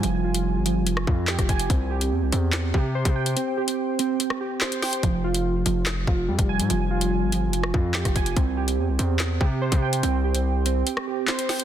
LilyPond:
<<
  \new Staff \with { instrumentName = "Synth keys" } { \time 4/4 \key f \minor \tempo 4 = 144 <f g f' aes''>8 f'4 f8 f8 f'8 g'8 aes''8 | c'8 g'4 c'8 c'8 g'8 c''8 g''8 | c'8 g'4 c'8 c'8 g'8 c''8 g''8 | f8 f'4 f4 f'8 g8 aes''8 |
f8 f'4 f8 f8 f'8 g'8 aes''8 | c'8 g'4 c'4 g'8 c''8 g''8 | c'8 g'4 c'8 c'8 g'8 c''8 g''8 | }
  \new Staff \with { instrumentName = "808-style bass" } { \clef bass \time 4/4 \key f \minor f,,4~ f,,16 g,,8~ g,,32 f,,8~ f,,32 f,8. f,,16 f,,8 | c,4 e,16 c,16 e,4 c8. c8. | r1 | f,,4. f,,4 f,,8 f,16 f,,8 aes,16 |
f,,4~ f,,16 g,,8~ g,,32 f,,8~ f,,32 f,8. f,,16 f,,8 | c,4 e,16 c,16 e,4 c8. c8. | c,2 r2 | }
  \new DrumStaff \with { instrumentName = "Drums" } \drummode { \time 4/4 hh8. hh16 r8 hh8 hh16 ss16 bd8 <hc sn>16 <hh bd ss>16 <hh bd>16 hh16 | <hh bd>8. hh16 r8 hh8 <hc hh sn>8 bd8 r16 <hh bd>8 hh16 | hh8. hh16 r8 hh8 hh16 ss8. <hc sn>16 hh16 <hho sn>16 hh16 | <hh bd>8. hh16 r8 hh8 <hc hh sn>8 bd8 r16 <hh bd>8 hh16 |
hh8. hh16 r8 hh8 hh16 ss16 bd8 <hc sn>16 <hh bd ss>16 <hh bd>16 hh16 | <hh bd>8. hh16 r8 hh8 <hc hh sn>8 bd8 r16 <hh bd>8 hh16 | hh8. hh16 r8 hh8 hh16 ss8. <hc sn>16 hh16 <hho sn>16 hh16 | }
>>